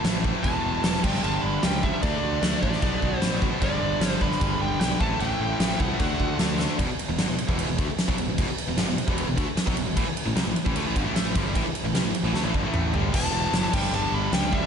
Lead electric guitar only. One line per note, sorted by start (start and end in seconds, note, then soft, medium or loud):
0.43 1.03 A5 loud
1.04 1.23 G5 loud
1.23 1.44 A5 loud
1.42 1.63 B5 loud
1.63 1.84 G5 loud
1.84 2.02 E5 medium
2.02 2.61 D5 medium
2.63 3.18 D5 loud
3.18 3.38 C5 loud
3.63 4.10 D5 loud
4.10 4.24 C5 loud
4.21 4.58 B5 loud
4.62 4.79 G5 medium
4.80 4.99 G5 medium
5.02 5.20 A5 medium
5.21 5.80 G5 loud
5.80 6.36 F#5 medium
13.15 13.73 A5 loud
13.74 13.94 G5 loud
13.94 14.14 A5 loud
14.14 14.34 B5 loud
14.34 14.54 G5 loud
14.52 14.66 E5 medium